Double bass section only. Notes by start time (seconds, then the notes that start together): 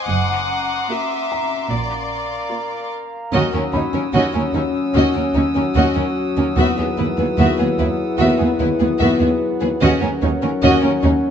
0.09 F#1
1.71 A#1
3.33 D#2
3.74 D#2
4.14 D#2
4.54 D#2
4.95 D#2
5.36 D#2
5.77 D#2
6.58 D#2
6.98 D#2
7.38 D#2
7.79 D#2
8.20 D#2
8.60 D#2
9.01 D#2
9.82 D#2
10.23 D#2
10.63 D#2
11.03 D#2